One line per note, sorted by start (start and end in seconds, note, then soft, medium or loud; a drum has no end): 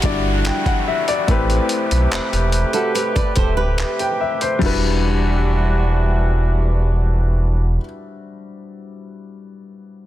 0.00 0.51 G1 medium
0.00 1.25 D3 medium
0.00 1.25 G3 medium
0.00 1.28 G3 medium
0.00 1.25 E4 medium
0.00 1.25 F#4 medium
0.00 kick medium
0.00 closed hi-hat medium
0.00 downlifter medium
0.04 1.29 D4 medium
0.04 1.28 E4 medium
0.04 1.29 F#4 medium
0.04 0.46 D5 medium
0.45 0.65 G5 medium
0.45 clap medium
0.45 closed hi-hat medium
0.66 0.86 F#5 medium
0.66 kick medium
0.66 closed hi-hat soft
0.88 1.07 E5 medium
1.08 1.48 D5 medium
1.08 closed hi-hat medium
1.28 1.60 A1 loud
1.28 4.59 C3 medium
1.28 4.57 A3 medium
1.28 4.58 A3 medium
1.28 4.58 C4 medium
1.28 4.58 E4 medium
1.28 4.59 G4 medium
1.28 4.59 B4 medium
1.28 3.76 B4 medium
1.28 kick loud
1.28 closed hi-hat medium
1.50 closed hi-hat soft
1.69 closed hi-hat medium
1.91 2.07 B1 medium
1.91 closed hi-hat medium
2.12 2.20 E1 soft
2.12 clap loud
2.12 closed hi-hat medium
2.33 2.65 E1 medium
2.33 closed hi-hat soft
2.52 closed hi-hat medium
2.73 2.94 F#4 medium
2.73 2.94 A4 medium
2.73 closed hi-hat soft
2.95 3.15 G4 medium
2.95 3.15 B4 medium
2.95 closed hi-hat medium
3.16 3.36 B4 medium
3.16 3.36 D5 medium
3.16 kick medium
3.16 closed hi-hat medium
3.36 3.84 D1 loud
3.36 3.57 A4 medium
3.36 3.56 C5 medium
3.36 kick medium
3.36 closed hi-hat medium
3.57 4.58 G4 medium
3.57 4.57 B4 medium
3.78 clap medium
3.78 closed hi-hat medium
3.99 4.20 G5 medium
3.99 closed hi-hat soft
4.21 4.40 E5 medium
4.41 4.81 C5 medium
4.41 closed hi-hat medium
4.59 7.79 E1 loud
4.59 7.78 E3 medium
4.59 7.76 G3 medium
4.59 7.78 G3 medium
4.59 7.78 D4 medium
4.59 7.79 E4 medium
4.59 7.78 F#4 medium
4.59 kick medium
4.59 crash medium
4.64 7.81 F#4 medium
4.64 7.83 B4 medium